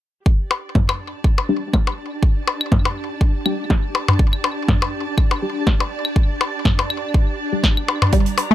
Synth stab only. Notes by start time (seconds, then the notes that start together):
1.49 G3 D4 G4
3.46 G3 D4 G4
5.42 G3 D4 G4
7.52 G3 D4 G4